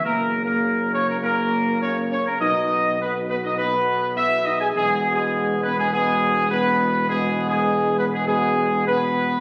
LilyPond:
<<
  \new Staff \with { instrumentName = "Trumpet section" } { \time 4/4 \key e \lydian \tempo 4 = 102 \tuplet 3/2 { ais'4 ais'8~ } ais'8 cis''16 ais'16 ais'4 cis''8 cis''16 ais'16 | dis''4 b'8 b'16 dis''16 b'4 e''8 dis''16 gis''16 | \tuplet 3/2 { gis'4 gis'8~ } gis'8 b'16 gis'16 gis'4 b'4 | \tuplet 3/2 { gis'4 gis'8~ } gis'8 b'16 gis'16 gis'4 b'4 | }
  \new Staff \with { instrumentName = "French horn section" } { \time 4/4 \key e \lydian \tuplet 3/2 { ais4 ais8~ } ais8 cis'16 ais16 ais4 cis'8 cis'16 ais16 | dis'4 b8 b16 dis'16 b4 e'8 dis'16 gis'16 | \tuplet 3/2 { gis4 gis8~ } gis8 b16 gis16 gis4 b4 | \tuplet 3/2 { gis4 gis8~ } gis8 b16 gis16 gis4 b4 | }
  \new Staff \with { instrumentName = "Trombone section" } { \clef bass \time 4/4 \key e \lydian <cis ais>2 <cis ais>4 <cis ais>4 | <b, b>4 <b, b>4 <b, b>2 | <b, b>2 <b, b>4 <b, b>4 | <b, b>2 <b, b>4 <b, b>4 | }
  \new Staff \with { instrumentName = "Tuba" } { \clef bass \time 4/4 \key e \lydian fis,,1 | b,,1 | e,,1~ | e,,1 | }
>>